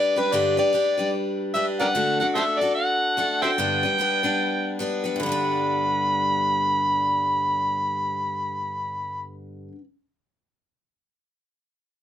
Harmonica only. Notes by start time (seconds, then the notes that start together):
Already playing: D5
0.19 B4
0.34 D5
0.59 D5
1.54 E5
1.80 A#4 D5 F#5
2.20 F#5
2.35 A4 C5 E5
2.60 D5
2.75 F#5
3.42 C5 E5 G5
5.21 B5